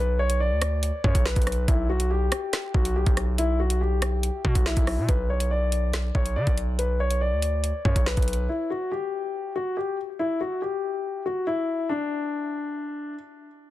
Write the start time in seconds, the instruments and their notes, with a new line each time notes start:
Already playing: 808-style bass B1, grand piano B4
0.19 grand piano C#5
0.30 closed hi-hat
0.40 grand piano D5
0.51 808-style bass D2
0.62 cross-stick, closed hi-hat
0.83 closed hi-hat
1.04 808-style bass F#2, grand piano C#5, kick
1.15 808-style bass B1, kick, closed hi-hat
1.26 grand piano B4, snare
1.36 808-style bass B1, kick, closed hi-hat
1.42 closed hi-hat
1.47 cross-stick, closed hi-hat
1.52 closed hi-hat
1.68 808-style bass B1, grand piano E4, kick, closed hi-hat
1.90 grand piano F#4
2.00 closed hi-hat
2.11 grand piano G4
2.32 cross-stick, closed hi-hat
2.53 snare, closed hi-hat
2.74 808-style bass B1, grand piano F#4, kick
2.85 closed hi-hat
2.96 grand piano G4
3.06 808-style bass B1, kick, closed hi-hat
3.17 cross-stick, closed hi-hat
3.38 grand piano E4, closed hi-hat
3.60 grand piano F#4
3.70 closed hi-hat
3.81 grand piano G4
4.02 cross-stick, closed hi-hat
4.23 closed hi-hat
4.45 808-style bass B2, grand piano F#4, kick
4.55 808-style bass B1, kick, closed hi-hat
4.66 grand piano E4, snare
4.77 808-style bass B1, kick, closed hi-hat
4.87 cross-stick, open hi-hat
4.98 808-style bass B2
5.09 808-style bass B1, grand piano B4, kick, closed hi-hat
5.30 grand piano C#5
5.40 closed hi-hat
5.51 grand piano D5
5.72 closed hi-hat
5.93 snare, closed hi-hat
6.15 808-style bass B1, grand piano C#5, kick
6.26 closed hi-hat
6.36 808-style bass D3, grand piano D5
6.47 808-style bass B1, kick, closed hi-hat
6.58 closed hi-hat
6.79 grand piano B4, closed hi-hat
7.00 grand piano C#5
7.11 closed hi-hat
7.21 grand piano D5
7.32 808-style bass D2
7.42 closed hi-hat
7.64 closed hi-hat
7.85 808-style bass F#2, grand piano C#5, kick
7.96 808-style bass B1, kick, closed hi-hat
8.06 grand piano B4, snare
8.17 808-style bass B1, kick, closed hi-hat
8.22 closed hi-hat
8.28 closed hi-hat
8.33 closed hi-hat
8.49 grand piano E4
8.70 grand piano F#4
8.92 grand piano G4
9.56 grand piano F#4
9.77 grand piano G4
10.19 grand piano E4
10.41 grand piano F#4
10.62 grand piano G4
11.26 grand piano F#4
11.47 grand piano E4
11.89 grand piano D4